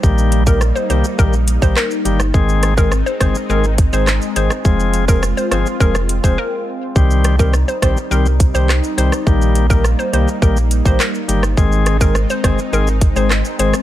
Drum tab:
HH |--x---x---x---x-|--x---x---x---x-|--x---x---x-----|--x---x---x---x-|
SH |xxxxxxxxxxxxxxxx|xxxxxxxxxxxxxxxx|xxxxxxxxxxxx----|xxxxxxxxxxxxxxxx|
CP |------------x---|------------x---|----------------|------------x---|
SD |----r-------r--r|--r-r-r-----r--r|----r-r--r------|--r-r-r-----r--r|
BD |o--o----o--o----|o--o--o---o-----|o--o----o--o----|o--o--o---o-----|

HH |--x---x---x---x-|--x---x---x---x-|
SH |xxxxxxxxxxxxxxxx|xxxxxxxxxxxxxxxx|
CP |------------x---|------------x---|
SD |----r-------r--r|--r-r-r-----r--r|
BD |o--o----o--o----|o--o--o---o-----|